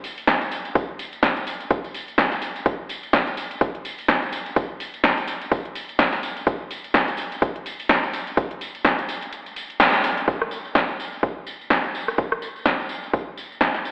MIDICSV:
0, 0, Header, 1, 2, 480
1, 0, Start_track
1, 0, Tempo, 476190
1, 761, Time_signature, 4, 2, 24, 8
1, 14027, End_track
2, 0, Start_track
2, 0, Title_t, "Drums"
2, 40, Note_on_c, 9, 46, 103
2, 46, Note_on_c, 9, 54, 87
2, 141, Note_off_c, 9, 46, 0
2, 147, Note_off_c, 9, 54, 0
2, 178, Note_on_c, 9, 46, 62
2, 178, Note_on_c, 9, 54, 38
2, 277, Note_on_c, 9, 38, 117
2, 279, Note_off_c, 9, 46, 0
2, 279, Note_off_c, 9, 54, 0
2, 279, Note_on_c, 9, 54, 51
2, 280, Note_on_c, 9, 36, 113
2, 280, Note_on_c, 9, 42, 73
2, 377, Note_off_c, 9, 38, 0
2, 380, Note_off_c, 9, 54, 0
2, 381, Note_off_c, 9, 36, 0
2, 381, Note_off_c, 9, 42, 0
2, 418, Note_on_c, 9, 42, 32
2, 422, Note_on_c, 9, 54, 39
2, 519, Note_off_c, 9, 42, 0
2, 520, Note_off_c, 9, 54, 0
2, 520, Note_on_c, 9, 46, 104
2, 520, Note_on_c, 9, 54, 82
2, 621, Note_off_c, 9, 46, 0
2, 621, Note_off_c, 9, 54, 0
2, 658, Note_on_c, 9, 42, 35
2, 659, Note_on_c, 9, 54, 38
2, 759, Note_off_c, 9, 42, 0
2, 759, Note_off_c, 9, 54, 0
2, 760, Note_on_c, 9, 36, 119
2, 760, Note_on_c, 9, 42, 70
2, 761, Note_on_c, 9, 54, 53
2, 861, Note_off_c, 9, 36, 0
2, 861, Note_off_c, 9, 42, 0
2, 862, Note_off_c, 9, 54, 0
2, 1000, Note_on_c, 9, 46, 101
2, 1001, Note_on_c, 9, 54, 82
2, 1101, Note_off_c, 9, 46, 0
2, 1102, Note_off_c, 9, 54, 0
2, 1135, Note_on_c, 9, 54, 35
2, 1138, Note_on_c, 9, 42, 33
2, 1235, Note_off_c, 9, 54, 0
2, 1237, Note_on_c, 9, 38, 109
2, 1239, Note_off_c, 9, 42, 0
2, 1239, Note_on_c, 9, 54, 53
2, 1240, Note_on_c, 9, 36, 114
2, 1240, Note_on_c, 9, 42, 72
2, 1337, Note_off_c, 9, 38, 0
2, 1339, Note_off_c, 9, 54, 0
2, 1341, Note_off_c, 9, 36, 0
2, 1341, Note_off_c, 9, 42, 0
2, 1378, Note_on_c, 9, 42, 47
2, 1379, Note_on_c, 9, 54, 37
2, 1479, Note_off_c, 9, 42, 0
2, 1480, Note_off_c, 9, 54, 0
2, 1480, Note_on_c, 9, 46, 103
2, 1488, Note_on_c, 9, 54, 92
2, 1581, Note_off_c, 9, 46, 0
2, 1588, Note_off_c, 9, 54, 0
2, 1618, Note_on_c, 9, 42, 47
2, 1623, Note_on_c, 9, 54, 38
2, 1716, Note_off_c, 9, 54, 0
2, 1716, Note_on_c, 9, 54, 51
2, 1719, Note_off_c, 9, 42, 0
2, 1720, Note_on_c, 9, 36, 114
2, 1720, Note_on_c, 9, 42, 73
2, 1817, Note_off_c, 9, 54, 0
2, 1821, Note_off_c, 9, 36, 0
2, 1821, Note_off_c, 9, 42, 0
2, 1858, Note_on_c, 9, 42, 34
2, 1862, Note_on_c, 9, 54, 38
2, 1959, Note_off_c, 9, 42, 0
2, 1960, Note_on_c, 9, 46, 100
2, 1963, Note_off_c, 9, 54, 0
2, 1966, Note_on_c, 9, 54, 81
2, 2061, Note_off_c, 9, 46, 0
2, 2067, Note_off_c, 9, 54, 0
2, 2099, Note_on_c, 9, 42, 34
2, 2102, Note_on_c, 9, 54, 39
2, 2197, Note_on_c, 9, 38, 114
2, 2198, Note_off_c, 9, 54, 0
2, 2198, Note_on_c, 9, 54, 53
2, 2199, Note_off_c, 9, 42, 0
2, 2200, Note_on_c, 9, 36, 114
2, 2200, Note_on_c, 9, 42, 74
2, 2298, Note_off_c, 9, 38, 0
2, 2298, Note_off_c, 9, 54, 0
2, 2301, Note_off_c, 9, 36, 0
2, 2301, Note_off_c, 9, 42, 0
2, 2335, Note_on_c, 9, 38, 34
2, 2338, Note_on_c, 9, 42, 32
2, 2345, Note_on_c, 9, 54, 37
2, 2436, Note_off_c, 9, 38, 0
2, 2436, Note_off_c, 9, 54, 0
2, 2436, Note_on_c, 9, 54, 87
2, 2439, Note_off_c, 9, 42, 0
2, 2440, Note_on_c, 9, 46, 102
2, 2537, Note_off_c, 9, 54, 0
2, 2541, Note_off_c, 9, 46, 0
2, 2579, Note_on_c, 9, 42, 34
2, 2582, Note_on_c, 9, 54, 40
2, 2679, Note_off_c, 9, 54, 0
2, 2679, Note_on_c, 9, 54, 50
2, 2680, Note_off_c, 9, 42, 0
2, 2680, Note_on_c, 9, 36, 110
2, 2680, Note_on_c, 9, 42, 73
2, 2779, Note_off_c, 9, 54, 0
2, 2781, Note_off_c, 9, 36, 0
2, 2781, Note_off_c, 9, 42, 0
2, 2915, Note_on_c, 9, 54, 85
2, 2921, Note_on_c, 9, 46, 100
2, 3016, Note_off_c, 9, 54, 0
2, 3021, Note_off_c, 9, 46, 0
2, 3054, Note_on_c, 9, 54, 38
2, 3059, Note_on_c, 9, 42, 34
2, 3155, Note_off_c, 9, 54, 0
2, 3157, Note_on_c, 9, 38, 102
2, 3159, Note_off_c, 9, 42, 0
2, 3160, Note_on_c, 9, 36, 115
2, 3161, Note_on_c, 9, 42, 70
2, 3161, Note_on_c, 9, 54, 49
2, 3258, Note_off_c, 9, 38, 0
2, 3261, Note_off_c, 9, 36, 0
2, 3261, Note_off_c, 9, 42, 0
2, 3262, Note_off_c, 9, 54, 0
2, 3298, Note_on_c, 9, 42, 47
2, 3300, Note_on_c, 9, 54, 36
2, 3398, Note_off_c, 9, 54, 0
2, 3398, Note_on_c, 9, 54, 86
2, 3399, Note_off_c, 9, 42, 0
2, 3400, Note_on_c, 9, 46, 95
2, 3499, Note_off_c, 9, 54, 0
2, 3501, Note_off_c, 9, 46, 0
2, 3539, Note_on_c, 9, 42, 48
2, 3542, Note_on_c, 9, 54, 37
2, 3639, Note_off_c, 9, 54, 0
2, 3639, Note_on_c, 9, 54, 48
2, 3640, Note_off_c, 9, 42, 0
2, 3640, Note_on_c, 9, 36, 114
2, 3640, Note_on_c, 9, 42, 74
2, 3740, Note_off_c, 9, 54, 0
2, 3741, Note_off_c, 9, 36, 0
2, 3741, Note_off_c, 9, 42, 0
2, 3779, Note_on_c, 9, 42, 33
2, 3879, Note_off_c, 9, 42, 0
2, 3880, Note_on_c, 9, 46, 101
2, 3882, Note_on_c, 9, 54, 82
2, 3981, Note_off_c, 9, 46, 0
2, 3983, Note_off_c, 9, 54, 0
2, 4011, Note_on_c, 9, 54, 37
2, 4019, Note_on_c, 9, 46, 58
2, 4112, Note_off_c, 9, 54, 0
2, 4117, Note_on_c, 9, 38, 109
2, 4119, Note_off_c, 9, 46, 0
2, 4120, Note_on_c, 9, 36, 112
2, 4120, Note_on_c, 9, 42, 74
2, 4218, Note_off_c, 9, 38, 0
2, 4221, Note_off_c, 9, 36, 0
2, 4221, Note_off_c, 9, 42, 0
2, 4259, Note_on_c, 9, 42, 33
2, 4263, Note_on_c, 9, 54, 31
2, 4359, Note_off_c, 9, 42, 0
2, 4361, Note_off_c, 9, 54, 0
2, 4361, Note_on_c, 9, 46, 103
2, 4361, Note_on_c, 9, 54, 84
2, 4461, Note_off_c, 9, 46, 0
2, 4462, Note_off_c, 9, 54, 0
2, 4494, Note_on_c, 9, 54, 37
2, 4499, Note_on_c, 9, 42, 34
2, 4595, Note_off_c, 9, 54, 0
2, 4598, Note_on_c, 9, 54, 50
2, 4600, Note_off_c, 9, 42, 0
2, 4600, Note_on_c, 9, 36, 112
2, 4601, Note_on_c, 9, 42, 75
2, 4698, Note_off_c, 9, 54, 0
2, 4701, Note_off_c, 9, 36, 0
2, 4701, Note_off_c, 9, 42, 0
2, 4839, Note_on_c, 9, 54, 75
2, 4841, Note_on_c, 9, 46, 96
2, 4940, Note_off_c, 9, 54, 0
2, 4941, Note_off_c, 9, 46, 0
2, 4979, Note_on_c, 9, 42, 34
2, 4980, Note_on_c, 9, 54, 39
2, 5077, Note_off_c, 9, 54, 0
2, 5077, Note_on_c, 9, 38, 106
2, 5077, Note_on_c, 9, 54, 50
2, 5079, Note_off_c, 9, 42, 0
2, 5080, Note_on_c, 9, 36, 109
2, 5080, Note_on_c, 9, 42, 74
2, 5178, Note_off_c, 9, 38, 0
2, 5178, Note_off_c, 9, 54, 0
2, 5181, Note_off_c, 9, 36, 0
2, 5181, Note_off_c, 9, 42, 0
2, 5219, Note_on_c, 9, 42, 49
2, 5224, Note_on_c, 9, 54, 35
2, 5317, Note_off_c, 9, 54, 0
2, 5317, Note_on_c, 9, 54, 93
2, 5320, Note_off_c, 9, 42, 0
2, 5321, Note_on_c, 9, 46, 98
2, 5418, Note_off_c, 9, 54, 0
2, 5422, Note_off_c, 9, 46, 0
2, 5459, Note_on_c, 9, 42, 50
2, 5465, Note_on_c, 9, 54, 37
2, 5559, Note_off_c, 9, 54, 0
2, 5559, Note_on_c, 9, 54, 53
2, 5560, Note_off_c, 9, 42, 0
2, 5560, Note_on_c, 9, 36, 107
2, 5561, Note_on_c, 9, 42, 77
2, 5660, Note_off_c, 9, 54, 0
2, 5661, Note_off_c, 9, 36, 0
2, 5661, Note_off_c, 9, 42, 0
2, 5699, Note_on_c, 9, 42, 36
2, 5800, Note_off_c, 9, 42, 0
2, 5800, Note_on_c, 9, 54, 77
2, 5801, Note_on_c, 9, 46, 97
2, 5900, Note_off_c, 9, 54, 0
2, 5901, Note_off_c, 9, 46, 0
2, 5939, Note_on_c, 9, 42, 35
2, 5939, Note_on_c, 9, 54, 37
2, 6037, Note_on_c, 9, 38, 110
2, 6039, Note_off_c, 9, 42, 0
2, 6039, Note_off_c, 9, 54, 0
2, 6039, Note_on_c, 9, 54, 53
2, 6040, Note_on_c, 9, 36, 105
2, 6040, Note_on_c, 9, 42, 75
2, 6138, Note_off_c, 9, 38, 0
2, 6140, Note_off_c, 9, 54, 0
2, 6141, Note_off_c, 9, 36, 0
2, 6141, Note_off_c, 9, 42, 0
2, 6171, Note_on_c, 9, 54, 32
2, 6175, Note_on_c, 9, 38, 32
2, 6179, Note_on_c, 9, 42, 33
2, 6272, Note_off_c, 9, 54, 0
2, 6276, Note_off_c, 9, 38, 0
2, 6279, Note_off_c, 9, 42, 0
2, 6280, Note_on_c, 9, 46, 97
2, 6281, Note_on_c, 9, 54, 77
2, 6381, Note_off_c, 9, 46, 0
2, 6382, Note_off_c, 9, 54, 0
2, 6419, Note_on_c, 9, 42, 36
2, 6425, Note_on_c, 9, 54, 39
2, 6518, Note_off_c, 9, 54, 0
2, 6518, Note_on_c, 9, 54, 46
2, 6519, Note_off_c, 9, 42, 0
2, 6520, Note_on_c, 9, 36, 110
2, 6520, Note_on_c, 9, 42, 77
2, 6619, Note_off_c, 9, 54, 0
2, 6621, Note_off_c, 9, 36, 0
2, 6621, Note_off_c, 9, 42, 0
2, 6760, Note_on_c, 9, 46, 94
2, 6763, Note_on_c, 9, 54, 77
2, 6861, Note_off_c, 9, 46, 0
2, 6864, Note_off_c, 9, 54, 0
2, 6895, Note_on_c, 9, 54, 35
2, 6899, Note_on_c, 9, 42, 36
2, 6996, Note_off_c, 9, 54, 0
2, 6997, Note_on_c, 9, 38, 111
2, 6999, Note_off_c, 9, 42, 0
2, 7000, Note_on_c, 9, 36, 110
2, 7000, Note_on_c, 9, 54, 50
2, 7001, Note_on_c, 9, 42, 78
2, 7098, Note_off_c, 9, 38, 0
2, 7100, Note_off_c, 9, 54, 0
2, 7101, Note_off_c, 9, 36, 0
2, 7101, Note_off_c, 9, 42, 0
2, 7134, Note_on_c, 9, 54, 36
2, 7139, Note_on_c, 9, 42, 53
2, 7227, Note_off_c, 9, 54, 0
2, 7227, Note_on_c, 9, 54, 78
2, 7240, Note_off_c, 9, 42, 0
2, 7240, Note_on_c, 9, 46, 95
2, 7328, Note_off_c, 9, 54, 0
2, 7341, Note_off_c, 9, 46, 0
2, 7379, Note_on_c, 9, 42, 52
2, 7380, Note_on_c, 9, 54, 35
2, 7479, Note_off_c, 9, 42, 0
2, 7480, Note_on_c, 9, 36, 107
2, 7480, Note_on_c, 9, 42, 80
2, 7481, Note_off_c, 9, 54, 0
2, 7481, Note_on_c, 9, 54, 46
2, 7581, Note_off_c, 9, 36, 0
2, 7581, Note_off_c, 9, 42, 0
2, 7581, Note_off_c, 9, 54, 0
2, 7618, Note_on_c, 9, 42, 36
2, 7719, Note_off_c, 9, 42, 0
2, 7720, Note_on_c, 9, 46, 97
2, 7726, Note_on_c, 9, 54, 77
2, 7821, Note_off_c, 9, 46, 0
2, 7827, Note_off_c, 9, 54, 0
2, 7859, Note_on_c, 9, 46, 58
2, 7862, Note_on_c, 9, 54, 41
2, 7956, Note_off_c, 9, 54, 0
2, 7956, Note_on_c, 9, 54, 53
2, 7957, Note_on_c, 9, 38, 109
2, 7959, Note_off_c, 9, 46, 0
2, 7960, Note_on_c, 9, 36, 106
2, 7960, Note_on_c, 9, 42, 77
2, 8057, Note_off_c, 9, 54, 0
2, 8058, Note_off_c, 9, 38, 0
2, 8061, Note_off_c, 9, 36, 0
2, 8061, Note_off_c, 9, 42, 0
2, 8098, Note_on_c, 9, 42, 36
2, 8100, Note_on_c, 9, 54, 35
2, 8199, Note_off_c, 9, 42, 0
2, 8199, Note_off_c, 9, 54, 0
2, 8199, Note_on_c, 9, 54, 78
2, 8200, Note_on_c, 9, 46, 95
2, 8300, Note_off_c, 9, 54, 0
2, 8301, Note_off_c, 9, 46, 0
2, 8338, Note_on_c, 9, 42, 37
2, 8343, Note_on_c, 9, 54, 39
2, 8439, Note_off_c, 9, 42, 0
2, 8440, Note_off_c, 9, 54, 0
2, 8440, Note_on_c, 9, 36, 109
2, 8440, Note_on_c, 9, 42, 80
2, 8440, Note_on_c, 9, 54, 46
2, 8541, Note_off_c, 9, 36, 0
2, 8541, Note_off_c, 9, 42, 0
2, 8541, Note_off_c, 9, 54, 0
2, 8578, Note_on_c, 9, 42, 37
2, 8679, Note_off_c, 9, 42, 0
2, 8680, Note_on_c, 9, 46, 94
2, 8685, Note_on_c, 9, 54, 83
2, 8781, Note_off_c, 9, 46, 0
2, 8786, Note_off_c, 9, 54, 0
2, 8818, Note_on_c, 9, 42, 38
2, 8819, Note_on_c, 9, 54, 37
2, 8917, Note_on_c, 9, 38, 111
2, 8919, Note_off_c, 9, 42, 0
2, 8920, Note_off_c, 9, 54, 0
2, 8920, Note_on_c, 9, 36, 111
2, 8921, Note_on_c, 9, 42, 82
2, 8923, Note_on_c, 9, 54, 49
2, 9018, Note_off_c, 9, 38, 0
2, 9021, Note_off_c, 9, 36, 0
2, 9021, Note_off_c, 9, 42, 0
2, 9024, Note_off_c, 9, 54, 0
2, 9057, Note_on_c, 9, 54, 34
2, 9059, Note_on_c, 9, 42, 52
2, 9158, Note_off_c, 9, 54, 0
2, 9159, Note_off_c, 9, 42, 0
2, 9160, Note_on_c, 9, 46, 100
2, 9161, Note_on_c, 9, 54, 84
2, 9261, Note_off_c, 9, 46, 0
2, 9261, Note_off_c, 9, 54, 0
2, 9286, Note_on_c, 9, 54, 37
2, 9298, Note_on_c, 9, 42, 54
2, 9386, Note_off_c, 9, 54, 0
2, 9399, Note_off_c, 9, 42, 0
2, 9400, Note_on_c, 9, 42, 82
2, 9402, Note_on_c, 9, 54, 45
2, 9501, Note_off_c, 9, 42, 0
2, 9502, Note_off_c, 9, 54, 0
2, 9538, Note_on_c, 9, 42, 37
2, 9538, Note_on_c, 9, 54, 34
2, 9639, Note_off_c, 9, 42, 0
2, 9639, Note_off_c, 9, 54, 0
2, 9640, Note_on_c, 9, 46, 97
2, 9642, Note_on_c, 9, 54, 86
2, 9741, Note_off_c, 9, 46, 0
2, 9743, Note_off_c, 9, 54, 0
2, 9775, Note_on_c, 9, 54, 38
2, 9779, Note_on_c, 9, 42, 38
2, 9876, Note_off_c, 9, 54, 0
2, 9877, Note_on_c, 9, 38, 120
2, 9879, Note_off_c, 9, 42, 0
2, 9880, Note_on_c, 9, 42, 82
2, 9880, Note_on_c, 9, 54, 52
2, 9977, Note_off_c, 9, 38, 0
2, 9981, Note_off_c, 9, 42, 0
2, 9981, Note_off_c, 9, 54, 0
2, 10015, Note_on_c, 9, 38, 35
2, 10017, Note_on_c, 9, 54, 33
2, 10018, Note_on_c, 9, 42, 36
2, 10116, Note_off_c, 9, 38, 0
2, 10118, Note_off_c, 9, 54, 0
2, 10119, Note_off_c, 9, 42, 0
2, 10120, Note_on_c, 9, 46, 96
2, 10120, Note_on_c, 9, 54, 89
2, 10221, Note_off_c, 9, 46, 0
2, 10221, Note_off_c, 9, 54, 0
2, 10253, Note_on_c, 9, 54, 40
2, 10259, Note_on_c, 9, 42, 40
2, 10354, Note_off_c, 9, 54, 0
2, 10359, Note_off_c, 9, 42, 0
2, 10359, Note_on_c, 9, 54, 47
2, 10360, Note_on_c, 9, 36, 102
2, 10460, Note_off_c, 9, 54, 0
2, 10461, Note_off_c, 9, 36, 0
2, 10499, Note_on_c, 9, 37, 53
2, 10596, Note_on_c, 9, 54, 82
2, 10600, Note_off_c, 9, 37, 0
2, 10696, Note_off_c, 9, 54, 0
2, 10737, Note_on_c, 9, 54, 32
2, 10836, Note_off_c, 9, 54, 0
2, 10836, Note_on_c, 9, 54, 42
2, 10837, Note_on_c, 9, 38, 105
2, 10840, Note_on_c, 9, 36, 102
2, 10937, Note_off_c, 9, 54, 0
2, 10938, Note_off_c, 9, 38, 0
2, 10941, Note_off_c, 9, 36, 0
2, 10972, Note_on_c, 9, 54, 33
2, 11073, Note_off_c, 9, 54, 0
2, 11086, Note_on_c, 9, 54, 86
2, 11187, Note_off_c, 9, 54, 0
2, 11219, Note_on_c, 9, 54, 36
2, 11320, Note_off_c, 9, 54, 0
2, 11320, Note_on_c, 9, 36, 99
2, 11321, Note_on_c, 9, 54, 44
2, 11421, Note_off_c, 9, 36, 0
2, 11422, Note_off_c, 9, 54, 0
2, 11558, Note_on_c, 9, 54, 80
2, 11658, Note_off_c, 9, 54, 0
2, 11704, Note_on_c, 9, 54, 37
2, 11797, Note_on_c, 9, 38, 109
2, 11800, Note_on_c, 9, 36, 98
2, 11803, Note_off_c, 9, 54, 0
2, 11803, Note_on_c, 9, 54, 49
2, 11898, Note_off_c, 9, 38, 0
2, 11901, Note_off_c, 9, 36, 0
2, 11903, Note_off_c, 9, 54, 0
2, 11933, Note_on_c, 9, 54, 29
2, 12034, Note_off_c, 9, 54, 0
2, 12043, Note_on_c, 9, 54, 81
2, 12144, Note_off_c, 9, 54, 0
2, 12179, Note_on_c, 9, 37, 51
2, 12179, Note_on_c, 9, 54, 35
2, 12275, Note_off_c, 9, 54, 0
2, 12275, Note_on_c, 9, 54, 44
2, 12280, Note_off_c, 9, 37, 0
2, 12280, Note_on_c, 9, 36, 105
2, 12376, Note_off_c, 9, 54, 0
2, 12381, Note_off_c, 9, 36, 0
2, 12419, Note_on_c, 9, 37, 57
2, 12519, Note_on_c, 9, 54, 81
2, 12520, Note_off_c, 9, 37, 0
2, 12620, Note_off_c, 9, 54, 0
2, 12658, Note_on_c, 9, 54, 32
2, 12757, Note_on_c, 9, 38, 109
2, 12759, Note_off_c, 9, 54, 0
2, 12760, Note_on_c, 9, 36, 108
2, 12760, Note_on_c, 9, 54, 45
2, 12858, Note_off_c, 9, 38, 0
2, 12861, Note_off_c, 9, 36, 0
2, 12861, Note_off_c, 9, 54, 0
2, 12901, Note_on_c, 9, 54, 34
2, 12994, Note_off_c, 9, 54, 0
2, 12994, Note_on_c, 9, 54, 79
2, 13095, Note_off_c, 9, 54, 0
2, 13142, Note_on_c, 9, 54, 34
2, 13240, Note_on_c, 9, 36, 105
2, 13242, Note_off_c, 9, 54, 0
2, 13242, Note_on_c, 9, 54, 46
2, 13341, Note_off_c, 9, 36, 0
2, 13342, Note_off_c, 9, 54, 0
2, 13482, Note_on_c, 9, 54, 83
2, 13583, Note_off_c, 9, 54, 0
2, 13627, Note_on_c, 9, 54, 37
2, 13717, Note_on_c, 9, 38, 110
2, 13718, Note_off_c, 9, 54, 0
2, 13718, Note_on_c, 9, 54, 50
2, 13720, Note_on_c, 9, 36, 105
2, 13817, Note_off_c, 9, 38, 0
2, 13819, Note_off_c, 9, 54, 0
2, 13821, Note_off_c, 9, 36, 0
2, 13851, Note_on_c, 9, 54, 31
2, 13855, Note_on_c, 9, 38, 32
2, 13952, Note_off_c, 9, 54, 0
2, 13956, Note_off_c, 9, 38, 0
2, 13963, Note_on_c, 9, 54, 76
2, 14027, Note_off_c, 9, 54, 0
2, 14027, End_track
0, 0, End_of_file